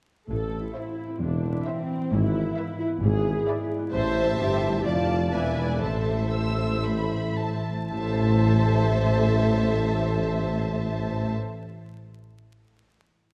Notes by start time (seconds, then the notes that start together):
0.29 A1 A2 A4
0.46 C4
0.61 E4
0.74 E4 C5 E5
0.91 E4
1.07 C4
1.21 E1 E2 E3 D4
1.37 C4
1.53 E4
1.67 C4 C5 E5
1.82 E4
1.97 C4
2.11 G#1 G#2 E4
2.27 B3
2.42 E4
2.56 B4 E5
2.73 E4
2.79 E4
2.88 B3
3.02 G#1 G#2 G#4
3.18 B3
3.33 E4
3.48 B4 D5 E5
3.63 E4
3.79 B3
3.92 A1 A2 C5 E5 A5
4.09 A3
4.24 E4
4.38 G1 G2 G4 C5
4.54 E4
4.70 A3
4.80 G4
4.85 F1 F2 F4 D5 A5
5.01 A3
5.16 D4 D5
5.31 E1 E2 B4 D5 E5 G#5
5.49 G#3
5.66 E4 D5
5.81 A1 A2 A4 C5 E5 A5
5.99 A3
6.16 E4
6.32 C5 E6
6.50 E4
6.67 A3
6.84 E3 B5
7.02 A3
7.20 E4
7.38 C5 A5
7.55 E4
7.74 A3
7.91 A1 A2 A4 C5 E5 A5
7.99 A3
8.06 E4
8.13 C5
8.20 E5